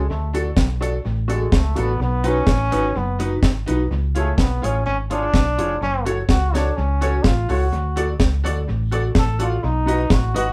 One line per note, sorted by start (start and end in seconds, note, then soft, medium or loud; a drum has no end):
0.10 0.50 D2 loud
0.10 0.33 A3 medium
0.33 0.45 D4 medium
0.33 0.45 F#4 medium
0.33 0.50 F#4 medium
0.33 0.45 A4 loud
0.33 0.50 A4 medium
0.33 0.50 D5 medium
0.33 closed hi-hat medium
0.57 0.97 B1 medium
0.57 kick loud
0.57 snare loud
0.80 0.92 D4 medium
0.80 0.97 F#4 medium
0.80 0.92 F#4 medium
0.80 0.97 A4 medium
0.80 0.93 A4 loud
0.80 0.97 D5 medium
0.80 closed hi-hat medium
1.05 1.45 A1 loud
1.28 1.56 G#3 medium
1.28 1.40 D4 medium
1.28 1.44 F#4 medium
1.28 1.40 F#4 medium
1.28 1.45 A4 loud
1.28 1.40 A4 loud
1.28 1.45 D5 loud
1.28 closed hi-hat medium
1.52 1.74 C#2 medium
1.52 1.82 A3 medium
1.52 kick loud
1.52 snare loud
1.76 1.97 A1 medium
1.76 1.88 D4 medium
1.76 1.92 F#4 medium
1.76 1.88 F#4 medium
1.76 1.92 A4 medium
1.76 1.88 A4 loud
1.76 1.93 D5 loud
1.76 closed hi-hat medium
1.80 2.01 B3 medium
2.00 2.40 B1 loud
2.00 2.29 B3 loud
2.24 2.35 D#4 medium
2.24 2.40 D#4 medium
2.24 2.35 F#4 medium
2.24 2.41 F#4 medium
2.24 2.36 B4 loud
2.24 2.41 B4 medium
2.24 closed hi-hat medium
2.28 2.99 C#4 loud
2.47 2.69 A1 medium
2.47 kick loud
2.47 snare loud
2.71 2.92 G#1 medium
2.71 2.83 D#4 medium
2.71 2.88 D#4 medium
2.71 2.83 F#4 medium
2.71 2.88 F#4 loud
2.71 2.83 B4 loud
2.71 2.89 B4 loud
2.71 closed hi-hat medium
2.96 3.36 F#1 loud
2.96 3.21 B3 medium
3.19 3.30 D#4 medium
3.19 3.36 D#4 medium
3.19 3.31 F#4 medium
3.19 3.36 F#4 medium
3.19 3.31 B4 loud
3.19 3.36 B4 medium
3.19 closed hi-hat medium
3.43 3.64 G#1 medium
3.43 kick loud
3.43 snare loud
3.66 3.87 B1 medium
3.66 3.78 D#4 medium
3.66 3.84 D#4 medium
3.66 3.78 F#4 medium
3.66 3.84 F#4 medium
3.66 3.79 B4 loud
3.66 3.84 B4 medium
3.66 closed hi-hat medium
3.91 4.31 C#2 loud
4.15 4.42 A3 medium
4.15 4.26 F4 medium
4.15 4.32 F4 medium
4.15 4.26 G#4 medium
4.15 4.32 G#4 medium
4.15 4.27 C#5 loud
4.15 4.32 C#5 medium
4.15 closed hi-hat medium
4.38 4.60 B1 medium
4.38 4.66 B3 medium
4.38 kick loud
4.38 snare loud
4.62 4.83 A1 medium
4.62 4.85 C#4 medium
4.62 4.73 F4 medium
4.62 4.79 F4 medium
4.62 4.74 G#4 medium
4.62 4.79 G#4 medium
4.62 4.74 C#5 loud
4.62 4.80 C#5 medium
4.62 closed hi-hat medium
4.86 5.27 G#1 loud
4.86 4.97 C#4 loud
5.10 5.77 D4 loud
5.10 5.21 F4 medium
5.10 5.26 F4 medium
5.10 5.22 G#4 medium
5.10 5.27 G#4 medium
5.10 5.22 C#5 loud
5.10 5.27 C#5 medium
5.10 closed hi-hat medium
5.34 5.55 B1 medium
5.34 kick loud
5.34 snare loud
5.58 5.78 F1 medium
5.58 5.69 F4 medium
5.58 5.74 F4 medium
5.58 5.69 G#4 medium
5.58 5.75 G#4 medium
5.58 5.70 C#5 loud
5.58 5.75 C#5 loud
5.58 closed hi-hat medium
5.81 6.22 F#1 loud
5.81 6.05 C#4 medium
6.05 6.17 F#4 medium
6.05 6.22 F#4 medium
6.05 6.17 A4 medium
6.05 6.22 A4 medium
6.05 6.17 C#5 loud
6.05 6.23 C#5 medium
6.05 closed hi-hat medium
6.29 6.70 C#2 medium
6.29 6.56 F#4 loud
6.29 kick loud
6.29 snare loud
6.53 6.78 D4 medium
6.53 6.69 F#4 medium
6.53 6.65 F#4 medium
6.53 6.70 A4 medium
6.53 6.65 A4 medium
6.53 6.70 C#5 medium
6.53 6.66 C#5 loud
6.53 snare medium
6.53 closed hi-hat medium
6.76 7.18 C#2 medium
6.76 7.26 C#4 medium
7.01 7.12 F#4 loud
7.01 7.17 F#4 medium
7.01 7.13 A4 medium
7.01 7.18 A4 medium
7.01 7.13 C#5 loud
7.01 7.18 C#5 medium
7.01 closed hi-hat medium
7.24 7.46 A1 medium
7.24 7.52 F4 medium
7.24 kick loud
7.24 snare loud
7.49 7.69 C#2 medium
7.49 7.60 F#4 medium
7.49 7.65 F#4 medium
7.49 7.98 F#4 medium
7.49 7.60 A4 medium
7.49 7.66 A4 medium
7.49 7.61 C#5 loud
7.49 7.66 C#5 loud
7.49 open hi-hat medium
7.72 8.13 D2 loud
7.72 hi-hat pedal medium
7.96 8.08 F#4 medium
7.96 8.13 F#4 medium
7.96 8.08 A4 medium
7.96 8.13 A4 medium
7.96 8.08 D5 loud
7.96 8.13 D5 medium
7.96 closed hi-hat medium
8.20 8.42 C#2 medium
8.20 kick loud
8.20 snare loud
8.44 8.65 D2 loud
8.44 8.55 F#4 loud
8.44 8.61 F#4 medium
8.44 8.55 A4 medium
8.44 8.61 A4 medium
8.44 8.56 D5 loud
8.44 8.61 D5 loud
8.44 closed hi-hat medium
8.69 9.09 A1 loud
8.91 9.03 F#4 medium
8.91 9.08 F#4 medium
8.91 9.03 A4 medium
8.91 9.09 A4 medium
8.91 9.04 D5 loud
8.91 9.09 D5 medium
8.91 closed hi-hat medium
9.15 9.56 A1 medium
9.15 9.40 A4 loud
9.15 kick loud
9.15 snare loud
9.39 9.65 F4 medium
9.39 9.50 F#4 loud
9.39 9.56 F#4 medium
9.39 9.51 A4 medium
9.39 9.56 A4 medium
9.39 9.51 D5 loud
9.39 9.56 D5 medium
9.39 closed hi-hat medium
9.64 10.04 B1 loud
9.64 10.14 D#4 loud
9.86 10.03 D#4 medium
9.86 10.03 F#4 loud
9.86 9.98 F#4 loud
9.86 9.99 B4 medium
9.86 10.03 B4 medium
9.86 9.99 D#5 loud
9.86 closed hi-hat medium
10.10 10.32 A1 loud
10.10 10.36 F#4 medium
10.10 kick loud
10.10 snare loud
10.34 10.53 G#1 medium
10.34 10.50 D#4 medium
10.34 10.46 F#4 medium
10.34 10.51 F#4 medium
10.34 10.53 F#4 medium
10.34 10.46 B4 medium
10.34 10.51 B4 loud
10.34 10.46 D#5 loud
10.34 closed hi-hat medium